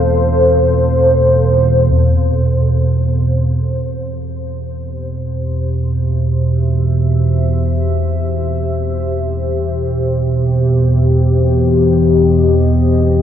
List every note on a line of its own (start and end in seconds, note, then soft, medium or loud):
0.00 1.91 E2 medium
0.00 1.90 B2 medium
0.00 3.63 A4 medium
0.00 13.22 C5 medium
0.00 1.95 F5 medium
1.91 13.22 E2 medium
1.91 13.22 B2 medium
2.21 13.22 G4 medium
5.22 10.90 E5 medium
10.61 13.22 D#5 medium